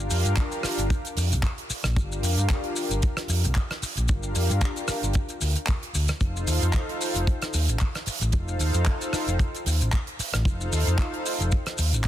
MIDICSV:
0, 0, Header, 1, 5, 480
1, 0, Start_track
1, 0, Key_signature, -2, "minor"
1, 0, Tempo, 530973
1, 1773, Time_signature, 4, 2, 24, 8
1, 10919, End_track
2, 0, Start_track
2, 0, Title_t, "Analog synth pad"
2, 0, Program_c, 0, 89
2, 0, Note_on_c, 0, 62, 88
2, 0, Note_on_c, 0, 65, 77
2, 0, Note_on_c, 0, 67, 81
2, 0, Note_on_c, 0, 70, 82
2, 0, Note_on_c, 0, 77, 94
2, 542, Note_off_c, 0, 62, 0
2, 545, Note_off_c, 0, 65, 0
2, 547, Note_off_c, 0, 67, 0
2, 550, Note_off_c, 0, 70, 0
2, 551, Note_off_c, 0, 77, 0
2, 1762, Note_on_c, 0, 62, 91
2, 1767, Note_on_c, 0, 65, 82
2, 1770, Note_on_c, 0, 67, 84
2, 1775, Note_on_c, 0, 70, 79
2, 1782, Note_on_c, 0, 77, 95
2, 2462, Note_off_c, 0, 62, 0
2, 2465, Note_off_c, 0, 65, 0
2, 2466, Note_off_c, 0, 67, 0
2, 2468, Note_off_c, 0, 70, 0
2, 2472, Note_off_c, 0, 77, 0
2, 3685, Note_on_c, 0, 62, 89
2, 3688, Note_on_c, 0, 65, 79
2, 3692, Note_on_c, 0, 67, 79
2, 3697, Note_on_c, 0, 70, 80
2, 3703, Note_on_c, 0, 77, 96
2, 4383, Note_off_c, 0, 62, 0
2, 4385, Note_off_c, 0, 65, 0
2, 4387, Note_off_c, 0, 67, 0
2, 4390, Note_off_c, 0, 70, 0
2, 4392, Note_off_c, 0, 77, 0
2, 5602, Note_on_c, 0, 63, 85
2, 5607, Note_on_c, 0, 65, 80
2, 5612, Note_on_c, 0, 69, 81
2, 5617, Note_on_c, 0, 72, 80
2, 5621, Note_on_c, 0, 77, 97
2, 6302, Note_off_c, 0, 63, 0
2, 6305, Note_off_c, 0, 65, 0
2, 6307, Note_off_c, 0, 69, 0
2, 6309, Note_off_c, 0, 72, 0
2, 6311, Note_off_c, 0, 77, 0
2, 7522, Note_on_c, 0, 63, 86
2, 7527, Note_on_c, 0, 65, 80
2, 7531, Note_on_c, 0, 69, 82
2, 7536, Note_on_c, 0, 72, 78
2, 7539, Note_on_c, 0, 77, 96
2, 8222, Note_off_c, 0, 63, 0
2, 8224, Note_off_c, 0, 65, 0
2, 8226, Note_off_c, 0, 69, 0
2, 8229, Note_off_c, 0, 72, 0
2, 8230, Note_off_c, 0, 77, 0
2, 9443, Note_on_c, 0, 63, 86
2, 9448, Note_on_c, 0, 65, 77
2, 9452, Note_on_c, 0, 69, 82
2, 9456, Note_on_c, 0, 72, 84
2, 9461, Note_on_c, 0, 77, 99
2, 10143, Note_off_c, 0, 63, 0
2, 10145, Note_off_c, 0, 65, 0
2, 10147, Note_off_c, 0, 69, 0
2, 10149, Note_off_c, 0, 72, 0
2, 10151, Note_off_c, 0, 77, 0
2, 10919, End_track
3, 0, Start_track
3, 0, Title_t, "Fingered electric bass"
3, 0, Program_c, 1, 33
3, 98, Note_on_c, 1, 41, 88
3, 196, Note_off_c, 1, 41, 0
3, 230, Note_on_c, 1, 43, 100
3, 309, Note_off_c, 1, 43, 0
3, 710, Note_on_c, 1, 31, 93
3, 788, Note_off_c, 1, 31, 0
3, 1057, Note_on_c, 1, 41, 89
3, 1187, Note_on_c, 1, 36, 83
3, 1201, Note_off_c, 1, 41, 0
3, 1267, Note_off_c, 1, 36, 0
3, 1668, Note_on_c, 1, 34, 92
3, 1748, Note_off_c, 1, 34, 0
3, 1777, Note_on_c, 1, 31, 101
3, 1962, Note_off_c, 1, 31, 0
3, 2014, Note_on_c, 1, 41, 93
3, 2113, Note_off_c, 1, 41, 0
3, 2147, Note_on_c, 1, 43, 99
3, 2227, Note_off_c, 1, 43, 0
3, 2624, Note_on_c, 1, 31, 92
3, 2706, Note_off_c, 1, 31, 0
3, 2975, Note_on_c, 1, 41, 90
3, 3105, Note_on_c, 1, 36, 83
3, 3119, Note_off_c, 1, 41, 0
3, 3186, Note_off_c, 1, 36, 0
3, 3589, Note_on_c, 1, 34, 92
3, 3668, Note_off_c, 1, 34, 0
3, 3699, Note_on_c, 1, 31, 105
3, 3883, Note_off_c, 1, 31, 0
3, 3938, Note_on_c, 1, 41, 89
3, 4036, Note_off_c, 1, 41, 0
3, 4068, Note_on_c, 1, 43, 101
3, 4148, Note_off_c, 1, 43, 0
3, 4548, Note_on_c, 1, 31, 95
3, 4628, Note_off_c, 1, 31, 0
3, 4895, Note_on_c, 1, 38, 90
3, 4994, Note_off_c, 1, 38, 0
3, 5377, Note_on_c, 1, 38, 84
3, 5475, Note_off_c, 1, 38, 0
3, 5612, Note_on_c, 1, 29, 102
3, 5800, Note_off_c, 1, 29, 0
3, 5854, Note_on_c, 1, 39, 90
3, 5954, Note_off_c, 1, 39, 0
3, 5986, Note_on_c, 1, 41, 101
3, 6066, Note_off_c, 1, 41, 0
3, 6466, Note_on_c, 1, 29, 96
3, 6546, Note_off_c, 1, 29, 0
3, 6816, Note_on_c, 1, 39, 84
3, 6945, Note_off_c, 1, 39, 0
3, 6945, Note_on_c, 1, 33, 83
3, 7026, Note_off_c, 1, 33, 0
3, 7423, Note_on_c, 1, 33, 90
3, 7505, Note_off_c, 1, 33, 0
3, 7533, Note_on_c, 1, 29, 105
3, 7720, Note_off_c, 1, 29, 0
3, 7772, Note_on_c, 1, 39, 89
3, 7872, Note_off_c, 1, 39, 0
3, 7902, Note_on_c, 1, 41, 97
3, 7985, Note_off_c, 1, 41, 0
3, 8384, Note_on_c, 1, 29, 90
3, 8466, Note_off_c, 1, 29, 0
3, 8732, Note_on_c, 1, 39, 87
3, 8868, Note_off_c, 1, 39, 0
3, 8868, Note_on_c, 1, 33, 84
3, 8948, Note_off_c, 1, 33, 0
3, 9347, Note_on_c, 1, 33, 91
3, 9427, Note_off_c, 1, 33, 0
3, 9450, Note_on_c, 1, 29, 99
3, 9638, Note_off_c, 1, 29, 0
3, 9695, Note_on_c, 1, 39, 91
3, 9794, Note_off_c, 1, 39, 0
3, 9825, Note_on_c, 1, 41, 100
3, 9906, Note_off_c, 1, 41, 0
3, 10308, Note_on_c, 1, 29, 91
3, 10387, Note_off_c, 1, 29, 0
3, 10654, Note_on_c, 1, 39, 86
3, 10785, Note_off_c, 1, 39, 0
3, 10785, Note_on_c, 1, 33, 84
3, 10866, Note_off_c, 1, 33, 0
3, 10919, End_track
4, 0, Start_track
4, 0, Title_t, "Muted fingered electric bass strokes"
4, 574, Note_on_c, 9, 29, 47
4, 665, Note_off_c, 9, 29, 0
4, 1535, Note_on_c, 9, 29, 43
4, 1626, Note_off_c, 9, 29, 0
4, 3456, Note_on_c, 9, 29, 42
4, 3547, Note_off_c, 9, 29, 0
4, 4416, Note_on_c, 9, 29, 43
4, 4506, Note_off_c, 9, 29, 0
4, 7293, Note_on_c, 9, 29, 44
4, 7384, Note_off_c, 9, 29, 0
4, 8250, Note_on_c, 9, 29, 43
4, 8341, Note_off_c, 9, 29, 0
4, 9213, Note_on_c, 9, 29, 46
4, 9303, Note_off_c, 9, 29, 0
4, 10919, End_track
5, 0, Start_track
5, 0, Title_t, "Drums"
5, 95, Note_on_c, 9, 46, 115
5, 95, Note_on_c, 9, 82, 88
5, 185, Note_off_c, 9, 82, 0
5, 186, Note_off_c, 9, 46, 0
5, 223, Note_on_c, 9, 42, 67
5, 229, Note_on_c, 9, 82, 51
5, 314, Note_off_c, 9, 42, 0
5, 320, Note_off_c, 9, 82, 0
5, 330, Note_on_c, 9, 39, 127
5, 332, Note_on_c, 9, 42, 81
5, 337, Note_on_c, 9, 36, 127
5, 339, Note_on_c, 9, 82, 54
5, 420, Note_off_c, 9, 39, 0
5, 423, Note_off_c, 9, 42, 0
5, 428, Note_off_c, 9, 36, 0
5, 429, Note_off_c, 9, 82, 0
5, 467, Note_on_c, 9, 42, 50
5, 468, Note_on_c, 9, 82, 48
5, 557, Note_off_c, 9, 42, 0
5, 558, Note_off_c, 9, 82, 0
5, 572, Note_on_c, 9, 37, 65
5, 576, Note_on_c, 9, 46, 103
5, 586, Note_on_c, 9, 82, 83
5, 662, Note_off_c, 9, 37, 0
5, 666, Note_off_c, 9, 46, 0
5, 677, Note_off_c, 9, 82, 0
5, 707, Note_on_c, 9, 42, 68
5, 714, Note_on_c, 9, 82, 48
5, 798, Note_off_c, 9, 42, 0
5, 804, Note_off_c, 9, 82, 0
5, 816, Note_on_c, 9, 36, 126
5, 817, Note_on_c, 9, 42, 80
5, 825, Note_on_c, 9, 82, 58
5, 906, Note_off_c, 9, 36, 0
5, 908, Note_off_c, 9, 42, 0
5, 915, Note_off_c, 9, 82, 0
5, 947, Note_on_c, 9, 42, 53
5, 962, Note_on_c, 9, 82, 47
5, 1037, Note_off_c, 9, 42, 0
5, 1052, Note_off_c, 9, 82, 0
5, 1055, Note_on_c, 9, 46, 103
5, 1066, Note_on_c, 9, 82, 91
5, 1145, Note_off_c, 9, 46, 0
5, 1156, Note_off_c, 9, 82, 0
5, 1193, Note_on_c, 9, 42, 65
5, 1197, Note_on_c, 9, 82, 51
5, 1284, Note_off_c, 9, 42, 0
5, 1288, Note_off_c, 9, 82, 0
5, 1292, Note_on_c, 9, 36, 120
5, 1294, Note_on_c, 9, 39, 121
5, 1294, Note_on_c, 9, 42, 78
5, 1305, Note_on_c, 9, 82, 62
5, 1382, Note_off_c, 9, 36, 0
5, 1385, Note_off_c, 9, 39, 0
5, 1385, Note_off_c, 9, 42, 0
5, 1395, Note_off_c, 9, 82, 0
5, 1428, Note_on_c, 9, 42, 51
5, 1518, Note_off_c, 9, 42, 0
5, 1536, Note_on_c, 9, 46, 98
5, 1537, Note_on_c, 9, 82, 83
5, 1626, Note_off_c, 9, 46, 0
5, 1628, Note_off_c, 9, 82, 0
5, 1663, Note_on_c, 9, 37, 80
5, 1671, Note_on_c, 9, 82, 50
5, 1754, Note_off_c, 9, 37, 0
5, 1761, Note_off_c, 9, 82, 0
5, 1776, Note_on_c, 9, 36, 127
5, 1776, Note_on_c, 9, 42, 76
5, 1789, Note_on_c, 9, 82, 61
5, 1866, Note_off_c, 9, 36, 0
5, 1866, Note_off_c, 9, 42, 0
5, 1879, Note_off_c, 9, 82, 0
5, 1916, Note_on_c, 9, 82, 49
5, 2007, Note_off_c, 9, 82, 0
5, 2018, Note_on_c, 9, 46, 112
5, 2028, Note_on_c, 9, 82, 92
5, 2108, Note_off_c, 9, 46, 0
5, 2119, Note_off_c, 9, 82, 0
5, 2148, Note_on_c, 9, 42, 63
5, 2157, Note_on_c, 9, 82, 49
5, 2238, Note_off_c, 9, 42, 0
5, 2248, Note_off_c, 9, 82, 0
5, 2252, Note_on_c, 9, 42, 74
5, 2255, Note_on_c, 9, 39, 127
5, 2260, Note_on_c, 9, 36, 125
5, 2262, Note_on_c, 9, 82, 64
5, 2342, Note_off_c, 9, 42, 0
5, 2346, Note_off_c, 9, 39, 0
5, 2350, Note_off_c, 9, 36, 0
5, 2352, Note_off_c, 9, 82, 0
5, 2384, Note_on_c, 9, 42, 52
5, 2474, Note_off_c, 9, 42, 0
5, 2496, Note_on_c, 9, 82, 93
5, 2498, Note_on_c, 9, 46, 101
5, 2587, Note_off_c, 9, 82, 0
5, 2588, Note_off_c, 9, 46, 0
5, 2629, Note_on_c, 9, 42, 69
5, 2629, Note_on_c, 9, 82, 50
5, 2720, Note_off_c, 9, 42, 0
5, 2720, Note_off_c, 9, 82, 0
5, 2733, Note_on_c, 9, 42, 68
5, 2735, Note_on_c, 9, 82, 58
5, 2740, Note_on_c, 9, 36, 127
5, 2823, Note_off_c, 9, 42, 0
5, 2825, Note_off_c, 9, 82, 0
5, 2830, Note_off_c, 9, 36, 0
5, 2864, Note_on_c, 9, 37, 68
5, 2868, Note_on_c, 9, 42, 57
5, 2869, Note_on_c, 9, 82, 46
5, 2955, Note_off_c, 9, 37, 0
5, 2958, Note_off_c, 9, 42, 0
5, 2960, Note_off_c, 9, 82, 0
5, 2968, Note_on_c, 9, 46, 106
5, 2977, Note_on_c, 9, 82, 84
5, 3058, Note_off_c, 9, 46, 0
5, 3068, Note_off_c, 9, 82, 0
5, 3110, Note_on_c, 9, 42, 73
5, 3114, Note_on_c, 9, 82, 51
5, 3200, Note_off_c, 9, 42, 0
5, 3205, Note_off_c, 9, 82, 0
5, 3209, Note_on_c, 9, 39, 127
5, 3212, Note_on_c, 9, 42, 71
5, 3219, Note_on_c, 9, 82, 59
5, 3221, Note_on_c, 9, 36, 117
5, 3300, Note_off_c, 9, 39, 0
5, 3303, Note_off_c, 9, 42, 0
5, 3309, Note_off_c, 9, 82, 0
5, 3312, Note_off_c, 9, 36, 0
5, 3349, Note_on_c, 9, 42, 49
5, 3352, Note_on_c, 9, 37, 68
5, 3440, Note_off_c, 9, 42, 0
5, 3443, Note_off_c, 9, 37, 0
5, 3454, Note_on_c, 9, 46, 97
5, 3462, Note_on_c, 9, 82, 93
5, 3544, Note_off_c, 9, 46, 0
5, 3553, Note_off_c, 9, 82, 0
5, 3588, Note_on_c, 9, 42, 65
5, 3590, Note_on_c, 9, 82, 51
5, 3678, Note_off_c, 9, 42, 0
5, 3681, Note_off_c, 9, 82, 0
5, 3692, Note_on_c, 9, 42, 73
5, 3692, Note_on_c, 9, 82, 64
5, 3699, Note_on_c, 9, 36, 118
5, 3782, Note_off_c, 9, 42, 0
5, 3782, Note_off_c, 9, 82, 0
5, 3789, Note_off_c, 9, 36, 0
5, 3824, Note_on_c, 9, 82, 44
5, 3915, Note_off_c, 9, 82, 0
5, 3932, Note_on_c, 9, 46, 119
5, 3936, Note_on_c, 9, 82, 90
5, 4023, Note_off_c, 9, 46, 0
5, 4026, Note_off_c, 9, 82, 0
5, 4066, Note_on_c, 9, 42, 71
5, 4076, Note_on_c, 9, 82, 50
5, 4157, Note_off_c, 9, 42, 0
5, 4166, Note_off_c, 9, 82, 0
5, 4167, Note_on_c, 9, 42, 80
5, 4172, Note_on_c, 9, 82, 59
5, 4173, Note_on_c, 9, 36, 117
5, 4178, Note_on_c, 9, 39, 110
5, 4258, Note_off_c, 9, 42, 0
5, 4262, Note_off_c, 9, 82, 0
5, 4263, Note_off_c, 9, 36, 0
5, 4269, Note_off_c, 9, 39, 0
5, 4304, Note_on_c, 9, 42, 50
5, 4312, Note_on_c, 9, 82, 50
5, 4394, Note_off_c, 9, 42, 0
5, 4403, Note_off_c, 9, 82, 0
5, 4410, Note_on_c, 9, 37, 65
5, 4411, Note_on_c, 9, 82, 94
5, 4412, Note_on_c, 9, 46, 101
5, 4501, Note_off_c, 9, 37, 0
5, 4501, Note_off_c, 9, 82, 0
5, 4502, Note_off_c, 9, 46, 0
5, 4548, Note_on_c, 9, 42, 63
5, 4554, Note_on_c, 9, 82, 50
5, 4638, Note_off_c, 9, 42, 0
5, 4641, Note_on_c, 9, 42, 73
5, 4644, Note_off_c, 9, 82, 0
5, 4655, Note_on_c, 9, 82, 62
5, 4658, Note_on_c, 9, 36, 121
5, 4732, Note_off_c, 9, 42, 0
5, 4745, Note_off_c, 9, 82, 0
5, 4748, Note_off_c, 9, 36, 0
5, 4778, Note_on_c, 9, 42, 47
5, 4787, Note_on_c, 9, 82, 50
5, 4868, Note_off_c, 9, 42, 0
5, 4878, Note_off_c, 9, 82, 0
5, 4889, Note_on_c, 9, 46, 103
5, 4893, Note_on_c, 9, 82, 87
5, 4979, Note_off_c, 9, 46, 0
5, 4983, Note_off_c, 9, 82, 0
5, 5022, Note_on_c, 9, 42, 63
5, 5024, Note_on_c, 9, 82, 45
5, 5112, Note_off_c, 9, 42, 0
5, 5115, Note_off_c, 9, 82, 0
5, 5122, Note_on_c, 9, 39, 114
5, 5127, Note_on_c, 9, 42, 84
5, 5137, Note_on_c, 9, 82, 56
5, 5139, Note_on_c, 9, 36, 115
5, 5213, Note_off_c, 9, 39, 0
5, 5217, Note_off_c, 9, 42, 0
5, 5228, Note_off_c, 9, 82, 0
5, 5229, Note_off_c, 9, 36, 0
5, 5269, Note_on_c, 9, 42, 52
5, 5359, Note_off_c, 9, 42, 0
5, 5375, Note_on_c, 9, 46, 96
5, 5376, Note_on_c, 9, 82, 96
5, 5465, Note_off_c, 9, 46, 0
5, 5467, Note_off_c, 9, 82, 0
5, 5498, Note_on_c, 9, 42, 67
5, 5500, Note_on_c, 9, 82, 55
5, 5507, Note_on_c, 9, 37, 84
5, 5588, Note_off_c, 9, 42, 0
5, 5591, Note_off_c, 9, 82, 0
5, 5597, Note_off_c, 9, 37, 0
5, 5612, Note_on_c, 9, 36, 107
5, 5612, Note_on_c, 9, 82, 56
5, 5614, Note_on_c, 9, 42, 80
5, 5702, Note_off_c, 9, 36, 0
5, 5703, Note_off_c, 9, 82, 0
5, 5704, Note_off_c, 9, 42, 0
5, 5755, Note_on_c, 9, 82, 53
5, 5845, Note_off_c, 9, 82, 0
5, 5851, Note_on_c, 9, 46, 120
5, 5853, Note_on_c, 9, 82, 92
5, 5942, Note_off_c, 9, 46, 0
5, 5943, Note_off_c, 9, 82, 0
5, 5987, Note_on_c, 9, 42, 61
5, 5988, Note_on_c, 9, 82, 51
5, 6078, Note_off_c, 9, 42, 0
5, 6079, Note_off_c, 9, 82, 0
5, 6084, Note_on_c, 9, 39, 113
5, 6093, Note_on_c, 9, 36, 118
5, 6094, Note_on_c, 9, 42, 85
5, 6094, Note_on_c, 9, 82, 68
5, 6175, Note_off_c, 9, 39, 0
5, 6183, Note_off_c, 9, 36, 0
5, 6184, Note_off_c, 9, 42, 0
5, 6184, Note_off_c, 9, 82, 0
5, 6231, Note_on_c, 9, 42, 52
5, 6322, Note_off_c, 9, 42, 0
5, 6335, Note_on_c, 9, 46, 105
5, 6342, Note_on_c, 9, 82, 89
5, 6425, Note_off_c, 9, 46, 0
5, 6432, Note_off_c, 9, 82, 0
5, 6466, Note_on_c, 9, 42, 68
5, 6471, Note_on_c, 9, 82, 54
5, 6556, Note_off_c, 9, 42, 0
5, 6561, Note_off_c, 9, 82, 0
5, 6575, Note_on_c, 9, 36, 124
5, 6575, Note_on_c, 9, 42, 81
5, 6581, Note_on_c, 9, 82, 62
5, 6665, Note_off_c, 9, 36, 0
5, 6665, Note_off_c, 9, 42, 0
5, 6671, Note_off_c, 9, 82, 0
5, 6704, Note_on_c, 9, 42, 56
5, 6710, Note_on_c, 9, 82, 49
5, 6711, Note_on_c, 9, 37, 62
5, 6794, Note_off_c, 9, 42, 0
5, 6801, Note_off_c, 9, 82, 0
5, 6802, Note_off_c, 9, 37, 0
5, 6812, Note_on_c, 9, 82, 83
5, 6813, Note_on_c, 9, 46, 104
5, 6903, Note_off_c, 9, 46, 0
5, 6903, Note_off_c, 9, 82, 0
5, 6944, Note_on_c, 9, 42, 66
5, 6950, Note_on_c, 9, 82, 51
5, 7034, Note_off_c, 9, 42, 0
5, 7041, Note_off_c, 9, 82, 0
5, 7046, Note_on_c, 9, 39, 117
5, 7052, Note_on_c, 9, 42, 71
5, 7054, Note_on_c, 9, 82, 63
5, 7063, Note_on_c, 9, 36, 117
5, 7136, Note_off_c, 9, 39, 0
5, 7142, Note_off_c, 9, 42, 0
5, 7145, Note_off_c, 9, 82, 0
5, 7153, Note_off_c, 9, 36, 0
5, 7186, Note_on_c, 9, 42, 57
5, 7191, Note_on_c, 9, 37, 63
5, 7277, Note_off_c, 9, 42, 0
5, 7281, Note_off_c, 9, 37, 0
5, 7286, Note_on_c, 9, 46, 108
5, 7300, Note_on_c, 9, 82, 84
5, 7376, Note_off_c, 9, 46, 0
5, 7390, Note_off_c, 9, 82, 0
5, 7423, Note_on_c, 9, 42, 71
5, 7431, Note_on_c, 9, 82, 55
5, 7513, Note_off_c, 9, 42, 0
5, 7522, Note_off_c, 9, 82, 0
5, 7524, Note_on_c, 9, 42, 76
5, 7529, Note_on_c, 9, 82, 62
5, 7533, Note_on_c, 9, 36, 118
5, 7615, Note_off_c, 9, 42, 0
5, 7619, Note_off_c, 9, 82, 0
5, 7624, Note_off_c, 9, 36, 0
5, 7668, Note_on_c, 9, 82, 46
5, 7758, Note_off_c, 9, 82, 0
5, 7768, Note_on_c, 9, 46, 99
5, 7779, Note_on_c, 9, 82, 100
5, 7859, Note_off_c, 9, 46, 0
5, 7869, Note_off_c, 9, 82, 0
5, 7904, Note_on_c, 9, 42, 66
5, 7904, Note_on_c, 9, 82, 58
5, 7994, Note_off_c, 9, 42, 0
5, 7994, Note_off_c, 9, 82, 0
5, 8006, Note_on_c, 9, 39, 113
5, 8007, Note_on_c, 9, 42, 80
5, 8016, Note_on_c, 9, 82, 67
5, 8017, Note_on_c, 9, 36, 123
5, 8097, Note_off_c, 9, 39, 0
5, 8097, Note_off_c, 9, 42, 0
5, 8106, Note_off_c, 9, 82, 0
5, 8107, Note_off_c, 9, 36, 0
5, 8147, Note_on_c, 9, 42, 61
5, 8149, Note_on_c, 9, 82, 55
5, 8237, Note_off_c, 9, 42, 0
5, 8240, Note_off_c, 9, 82, 0
5, 8253, Note_on_c, 9, 37, 68
5, 8254, Note_on_c, 9, 46, 100
5, 8263, Note_on_c, 9, 82, 94
5, 8343, Note_off_c, 9, 37, 0
5, 8344, Note_off_c, 9, 46, 0
5, 8353, Note_off_c, 9, 82, 0
5, 8386, Note_on_c, 9, 42, 62
5, 8394, Note_on_c, 9, 82, 56
5, 8477, Note_off_c, 9, 42, 0
5, 8484, Note_off_c, 9, 82, 0
5, 8492, Note_on_c, 9, 36, 109
5, 8494, Note_on_c, 9, 42, 75
5, 8498, Note_on_c, 9, 82, 63
5, 8583, Note_off_c, 9, 36, 0
5, 8584, Note_off_c, 9, 42, 0
5, 8588, Note_off_c, 9, 82, 0
5, 8629, Note_on_c, 9, 42, 51
5, 8640, Note_on_c, 9, 82, 48
5, 8719, Note_off_c, 9, 42, 0
5, 8730, Note_off_c, 9, 82, 0
5, 8733, Note_on_c, 9, 46, 114
5, 8747, Note_on_c, 9, 82, 90
5, 8823, Note_off_c, 9, 46, 0
5, 8837, Note_off_c, 9, 82, 0
5, 8869, Note_on_c, 9, 42, 60
5, 8873, Note_on_c, 9, 82, 57
5, 8959, Note_off_c, 9, 42, 0
5, 8963, Note_off_c, 9, 82, 0
5, 8970, Note_on_c, 9, 39, 116
5, 8974, Note_on_c, 9, 42, 81
5, 8978, Note_on_c, 9, 36, 114
5, 8979, Note_on_c, 9, 82, 68
5, 9060, Note_off_c, 9, 39, 0
5, 9065, Note_off_c, 9, 42, 0
5, 9068, Note_off_c, 9, 36, 0
5, 9069, Note_off_c, 9, 82, 0
5, 9105, Note_on_c, 9, 42, 56
5, 9195, Note_off_c, 9, 42, 0
5, 9214, Note_on_c, 9, 46, 106
5, 9220, Note_on_c, 9, 82, 87
5, 9304, Note_off_c, 9, 46, 0
5, 9310, Note_off_c, 9, 82, 0
5, 9344, Note_on_c, 9, 37, 83
5, 9348, Note_on_c, 9, 82, 52
5, 9353, Note_on_c, 9, 42, 66
5, 9435, Note_off_c, 9, 37, 0
5, 9438, Note_off_c, 9, 82, 0
5, 9444, Note_off_c, 9, 42, 0
5, 9450, Note_on_c, 9, 36, 114
5, 9455, Note_on_c, 9, 42, 77
5, 9470, Note_on_c, 9, 82, 62
5, 9540, Note_off_c, 9, 36, 0
5, 9546, Note_off_c, 9, 42, 0
5, 9560, Note_off_c, 9, 82, 0
5, 9589, Note_on_c, 9, 82, 46
5, 9680, Note_off_c, 9, 82, 0
5, 9695, Note_on_c, 9, 46, 109
5, 9697, Note_on_c, 9, 82, 93
5, 9785, Note_off_c, 9, 46, 0
5, 9787, Note_off_c, 9, 82, 0
5, 9827, Note_on_c, 9, 42, 71
5, 9836, Note_on_c, 9, 82, 52
5, 9917, Note_off_c, 9, 42, 0
5, 9926, Note_off_c, 9, 82, 0
5, 9927, Note_on_c, 9, 36, 124
5, 9932, Note_on_c, 9, 39, 121
5, 9935, Note_on_c, 9, 82, 63
5, 9936, Note_on_c, 9, 42, 79
5, 10017, Note_off_c, 9, 36, 0
5, 10022, Note_off_c, 9, 39, 0
5, 10025, Note_off_c, 9, 82, 0
5, 10026, Note_off_c, 9, 42, 0
5, 10067, Note_on_c, 9, 42, 57
5, 10158, Note_off_c, 9, 42, 0
5, 10174, Note_on_c, 9, 46, 103
5, 10179, Note_on_c, 9, 82, 94
5, 10265, Note_off_c, 9, 46, 0
5, 10270, Note_off_c, 9, 82, 0
5, 10305, Note_on_c, 9, 42, 63
5, 10318, Note_on_c, 9, 82, 53
5, 10395, Note_off_c, 9, 42, 0
5, 10408, Note_off_c, 9, 82, 0
5, 10410, Note_on_c, 9, 82, 57
5, 10412, Note_on_c, 9, 42, 80
5, 10418, Note_on_c, 9, 36, 126
5, 10500, Note_off_c, 9, 82, 0
5, 10503, Note_off_c, 9, 42, 0
5, 10508, Note_off_c, 9, 36, 0
5, 10541, Note_on_c, 9, 42, 55
5, 10547, Note_on_c, 9, 37, 61
5, 10551, Note_on_c, 9, 82, 45
5, 10631, Note_off_c, 9, 42, 0
5, 10637, Note_off_c, 9, 37, 0
5, 10642, Note_off_c, 9, 82, 0
5, 10649, Note_on_c, 9, 82, 92
5, 10653, Note_on_c, 9, 46, 111
5, 10739, Note_off_c, 9, 82, 0
5, 10743, Note_off_c, 9, 46, 0
5, 10782, Note_on_c, 9, 42, 65
5, 10791, Note_on_c, 9, 82, 53
5, 10873, Note_off_c, 9, 42, 0
5, 10882, Note_off_c, 9, 82, 0
5, 10883, Note_on_c, 9, 39, 112
5, 10891, Note_on_c, 9, 42, 74
5, 10919, Note_off_c, 9, 39, 0
5, 10919, Note_off_c, 9, 42, 0
5, 10919, End_track
0, 0, End_of_file